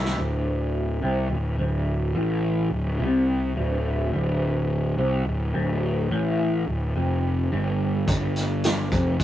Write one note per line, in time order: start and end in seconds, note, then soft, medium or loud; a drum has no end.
0.00 0.14 C2 medium
0.00 0.18 C4 medium
0.00 0.19 E4 medium
0.00 0.19 G4 medium
0.00 0.19 C5 medium
0.05 snare medium
0.18 0.99 D1 medium
0.18 1.02 D2 loud
1.02 1.29 C2 medium
1.02 1.30 C3 medium
1.30 1.57 D1 medium
1.30 1.54 D2 medium
1.58 2.11 D1 medium
1.58 2.15 D2 medium
2.14 2.68 A1 medium
2.14 2.71 A2 loud
2.71 2.98 D1 medium
2.71 2.95 D2 medium
2.99 3.52 C2 medium
2.99 3.56 C3 medium
3.56 4.09 D1 loud
3.56 4.12 D2 medium
4.13 4.94 D1 medium
4.13 4.97 D2 loud
4.98 5.24 C2 medium
4.98 5.25 C3 loud
5.26 5.53 D1 medium
5.26 5.48 D2 medium
5.54 6.07 D1 medium
5.54 6.10 D2 loud
6.11 6.63 A1 medium
6.11 6.66 A2 loud
6.67 6.93 D1 medium
6.67 6.90 D2 medium
6.96 7.48 F1 medium
6.96 7.51 F2 medium
7.52 8.04 G1 medium
7.52 8.07 G2 medium
8.08 8.88 G1 medium
8.08 8.91 G2 loud
8.08 kick loud
8.08 closed hi-hat medium
8.36 snare soft
8.36 closed hi-hat medium
8.64 snare loud
8.64 closed hi-hat medium
8.92 9.18 F1 medium
8.92 9.19 F2 medium
8.92 kick loud
8.92 closed hi-hat medium
9.20 9.24 G1 medium
9.20 kick medium
9.20 closed hi-hat medium